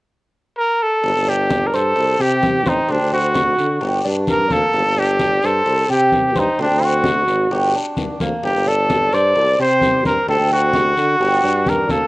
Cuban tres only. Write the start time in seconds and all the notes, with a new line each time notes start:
1.28 D4
1.74 C5
2.20 G4
2.66 C5
2.89 C4
3.35 F#4
3.82 G4
4.05 D4
4.51 A#3
4.98 D4
5.44 C5
5.90 G4
6.36 C5
6.59 C4
7.05 F#4
7.52 G4
7.75 D4
8.21 A#3
8.67 D4
9.14 C5
9.59 G4
10.05 C5
10.29 C4
10.75 F#4
11.21 G4
11.44 D4
11.90 A#3